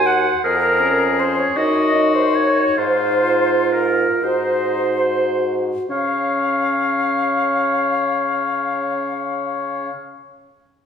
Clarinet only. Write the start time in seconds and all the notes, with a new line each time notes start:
0.06 F#5
0.44 A#4
1.20 C5
1.39 C#5
1.56 D#5
2.15 C5
2.35 C#5
2.78 C5
3.73 A#4
4.23 C5
5.91 F5